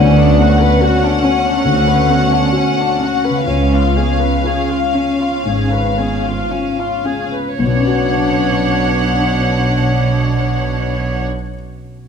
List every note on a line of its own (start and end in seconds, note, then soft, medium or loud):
0.00 0.68 D2 medium
0.00 1.62 D2 medium
0.00 3.42 D3 soft
0.00 3.33 B3 soft
0.00 0.18 C#4 medium
0.00 3.37 C#4 soft
0.00 3.47 C#4 medium
0.00 3.49 F#4 soft
0.00 3.43 F#5 medium
0.20 0.40 D4 soft
0.40 1.06 B3 soft
0.40 0.61 F#4 soft
0.60 0.81 B4 medium
0.81 1.49 F#4 soft
0.81 1.03 F#4 medium
1.03 1.24 D4 soft
1.23 1.91 C#4 soft
1.23 1.45 C#4 soft
1.47 1.67 D4 soft
1.65 3.43 D2 soft
1.65 2.39 D2 medium
1.65 1.86 F#4 soft
1.89 2.10 B4 soft
2.09 2.81 B3 soft
2.09 2.32 F#4 soft
2.33 2.55 D4 soft
2.53 2.78 C#4 soft
2.53 3.28 F#4 soft
2.79 3.01 D4 soft
3.00 3.47 C#4 soft
3.00 3.24 F#4 soft
3.25 7.19 C#3 soft
3.25 3.48 B4 soft
3.34 7.24 B3 soft
3.38 7.28 C#4 soft
3.43 4.27 C#2 soft
3.43 7.33 F4 soft
3.47 5.41 C#2 soft
3.47 4.28 C#2 soft
3.47 7.29 C#4 soft
3.47 3.71 C#4 soft
3.47 7.30 F5 soft
3.73 3.96 F4 soft
3.95 4.74 B3 soft
3.95 4.21 G#4 soft
4.21 4.45 B4 soft
4.44 5.25 F4 soft
4.44 4.70 G#4 soft
4.71 4.95 F4 soft
4.94 5.77 C#4 soft
4.94 5.20 C#4 soft
5.20 5.46 F4 soft
5.45 6.33 G#1 soft
5.45 6.33 G#2 soft
5.45 6.29 G#2 soft
5.45 5.70 G#4 soft
5.72 5.98 B4 soft
5.97 6.83 B3 soft
5.97 6.24 G#4 soft
6.25 6.51 F4 soft
6.51 6.78 C#4 soft
6.51 7.38 F4 soft
6.78 7.05 F4 soft
7.04 7.59 C#4 soft
7.04 7.33 G#4 soft
7.32 7.60 B4 soft
7.59 11.19 B1 soft
7.59 11.20 B1 soft
7.59 11.19 B2 soft
7.59 11.49 B2 soft
7.59 11.20 D4 soft
7.59 11.21 C#5 soft
7.59 11.21 F#5 soft
7.66 11.27 B2 soft
7.66 11.27 B3 soft
7.73 11.34 B3 soft
7.73 11.34 C#4 soft
7.80 11.40 C#4 soft
7.80 11.41 F#4 soft
7.87 11.48 F#4 soft
7.87 11.48 C#5 soft
7.94 11.54 C#5 soft